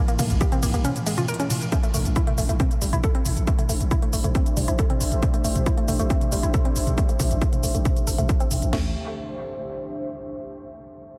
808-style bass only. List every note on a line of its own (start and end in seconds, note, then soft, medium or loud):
0.19 0.30 A#1 loud
0.30 0.41 A#1 medium
0.63 0.73 A#1 loud
0.74 0.84 A#1 medium
1.94 2.05 A1 loud
2.05 2.16 A1 medium
2.38 2.49 A1 loud
2.49 2.60 A1 medium
2.82 2.92 A1 loud
2.93 3.03 A1 medium
3.25 3.36 A1 loud
3.37 3.47 A1 medium
3.69 3.80 A1 loud
3.81 3.91 A1 medium
4.13 4.24 A1 loud
4.24 4.35 A1 medium
4.57 4.67 A1 loud
4.68 4.79 A1 medium
5.01 5.11 A1 loud
5.12 5.22 A1 medium
5.44 5.55 A1 loud
5.56 5.66 A1 medium
5.88 5.99 A1 loud
5.99 6.10 A1 medium
6.32 6.43 A1 loud
6.43 6.54 A1 medium
6.76 6.86 A1 loud
6.87 6.98 A1 medium
7.20 7.30 A1 loud
7.31 7.41 A1 medium
7.63 7.74 A1 loud
7.75 7.85 A1 medium
8.07 8.18 A1 loud
8.18 8.29 A1 medium
8.51 8.62 A1 loud
8.62 8.72 A1 medium
8.73 8.93 A1 medium